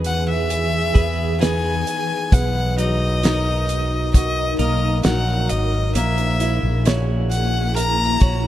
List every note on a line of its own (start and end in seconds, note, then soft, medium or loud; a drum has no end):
0.00 0.91 E2 medium
0.00 2.27 E3 medium
0.00 2.28 E3 medium
0.00 2.32 E3 medium
0.00 0.91 B3 soft
0.00 1.40 D#4 medium
0.00 1.40 G#4 medium
0.00 2.27 G#4 medium
0.00 0.94 B4 medium
0.00 1.36 B4 soft
0.04 0.27 F#5 medium
0.04 closed hi-hat medium
0.29 1.38 E5 medium
0.50 closed hi-hat medium
0.94 1.83 E2 medium
0.94 2.28 G#4 soft
0.94 1.41 B4 medium
0.94 kick medium
0.94 closed hi-hat medium
1.40 2.29 B3 soft
1.40 2.77 D#4 soft
1.40 2.42 G#4 soft
1.40 3.25 B4 medium
1.40 2.35 G#5 medium
1.40 snare medium
1.40 closed hi-hat medium
1.87 closed hi-hat medium
2.30 4.56 B1 medium
2.30 5.91 B3 medium
2.30 5.91 D#4 medium
2.30 5.91 A#4 medium
2.30 2.78 F#5 medium
2.30 kick loud
2.30 closed hi-hat medium
2.77 4.55 F#3 soft
2.77 3.23 D#4 medium
2.77 4.11 D#5 medium
2.77 closed hi-hat medium
3.23 5.01 D#4 soft
3.23 5.04 D#4 soft
3.23 5.05 F#4 medium
3.23 4.59 A#4 medium
3.23 snare loud
3.23 closed hi-hat medium
3.69 closed hi-hat medium
4.14 5.92 F#4 medium
4.14 4.56 D#5 medium
4.14 kick medium
4.14 closed hi-hat medium
4.58 5.02 B1 medium
4.58 5.92 A#3 soft
4.58 5.06 A#4 medium
4.58 5.01 D#5 medium
4.58 closed hi-hat medium
5.03 5.47 A#1 medium
5.03 5.93 F#3 soft
5.03 6.05 D#4 soft
5.03 6.44 F#4 medium
5.03 6.44 A#4 medium
5.03 5.51 F#5 medium
5.03 snare medium
5.03 closed hi-hat medium
5.49 5.93 G#1 medium
5.49 5.94 D#5 medium
5.49 closed hi-hat medium
5.94 6.59 A#1 loud
5.94 8.47 A#2 medium
5.94 8.47 A#3 medium
5.94 8.47 E4 medium
5.94 7.73 G#4 medium
5.94 6.82 E5 medium
5.94 closed hi-hat medium
6.18 closed hi-hat soft
6.40 8.17 E4 medium
6.40 6.85 E4 medium
6.40 closed hi-hat medium
6.63 8.17 A#1 medium
6.86 8.47 C#4 medium
6.86 8.47 E4 medium
6.86 8.21 F#4 medium
6.86 8.20 C#5 medium
6.86 snare medium
6.86 closed hi-hat medium
7.30 7.73 F#5 medium
7.30 closed hi-hat medium
7.75 8.47 A#4 medium
7.75 8.47 A#5 loud
7.75 closed hi-hat medium
8.20 8.47 A#1 medium
8.20 8.47 F#4 medium
8.20 8.47 C#5 medium
8.20 kick medium
8.20 closed hi-hat medium